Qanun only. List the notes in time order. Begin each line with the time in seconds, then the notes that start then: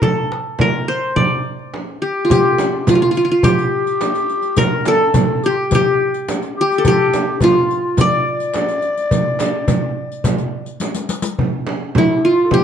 Already playing: E4 G4
0.03 A4
0.61 A#4
0.88 C5
1.16 D5
2.02 G4
2.25 F4
2.31 G4
2.89 F4
2.95 F4
3.02 F4
3.11 F4
3.17 F4
3.25 F4
3.31 F4
3.44 G4
4.58 A#4
4.88 A4
5.46 G4
5.75 G4
6.61 G4
6.78 A4
6.88 G4
7.44 F4
8.01 D5
11.98 E4
12.25 F4
12.54 G4